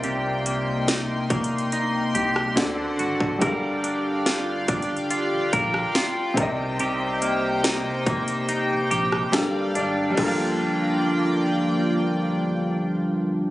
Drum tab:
CC |------------------------------------------------|------------------------------------------------|------------------------------------------------|x-----------------------------------------------|
HH |x-----x-----x-----x-x-x-x-----x-----x-----x-----|x-----x-----x-----x-x-x-x-----x-----x-----x-----|x-----x-----x-----x--x--x-----x-----x-----x-----|------------------------------------------------|
SD |------------o--------------------r--o-----------|------------o--------------------r--o-----------|------------o--------------------r--o-----------|------------------------------------------------|
BD |------------------o--------------------------o--|o-----------------o-----------o-----------o-----|------------------o-----------------------------|o-----------------------------------------------|